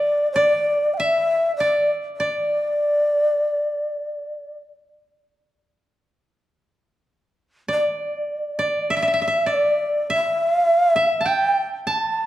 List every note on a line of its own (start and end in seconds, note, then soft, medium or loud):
0.00 0.32 D5 medium
0.00 0.35 D5 medium
0.00 0.53 E5 medium
0.33 0.95 D5 medium
0.33 1.60 D5 medium
0.94 1.56 E5 medium
0.94 0.98 G5 medium
1.00 2.49 E5 medium
1.56 1.90 D5 medium
1.56 2.19 D5 medium
2.17 4.58 D5 medium
2.17 4.60 D5 medium
7.68 8.58 D5 medium
7.73 8.88 D5 medium
8.59 9.46 D5 medium
8.90 8.96 E5 medium
8.90 9.54 E5 medium
8.97 9.02 E5 medium
9.02 9.07 E5 medium
9.08 9.13 E5 medium
9.14 9.21 E5 medium
9.22 9.27 E5 medium
9.28 10.10 E5 medium
9.46 11.06 D5 medium
9.53 10.12 D5 medium
10.10 10.95 E5 medium
10.10 11.31 E5 loud
10.96 12.26 E5 medium
11.21 11.86 A5 medium
11.26 12.26 G5 medium
11.26 11.63 G5 medium
11.87 12.26 A5 medium
11.87 12.26 A5 loud